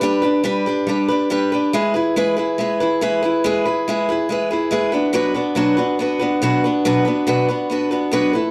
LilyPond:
\new Staff \with { instrumentName = "Steel-string acoustic guitar" } { \time 4/4 \key b \minor \tempo 4 = 141 <g d' g' b'>8 <d' g' b'>8 <g d' g' b'>8 <d' g' b'>8 <g d' g' b'>8 <d' g' b'>8 <g d' g' b'>8 <d' g' b'>8 | <gis e' gis' b'>8 <e' gis' b'>8 <gis e' gis' b'>8 <e' gis' b'>8 <gis e' gis' b'>8 <e' gis' b'>8 <gis e' gis' b'>8 <e' gis' b'>8 | <gis e' gis' b'>8 <e' gis' b'>8 <gis e' gis' b'>8 <e' gis' b'>8 <gis e' gis' b'>8 <e' gis' b'>8 <gis e' gis' b'>8 <b d' fis' b'>8 | <b, fis b d' fis' b'>8 <b d' fis' b'>8 <b, fis b d' fis' b'>8 <b d' fis' b'>8 <b d' fis' b'>8 <b d' fis' b'>8 <b, fis b d' fis' b'>8 <b d' fis' b'>8 |
<b, fis b d' fis' b'>8 <b d' fis' b'>8 <b, fis b d' fis' b'>8 <b d' fis' b'>8 <b d' fis' b'>8 <b d' fis' b'>8 <b, fis b d' fis' b'>8 <a e' a' b'>8 | }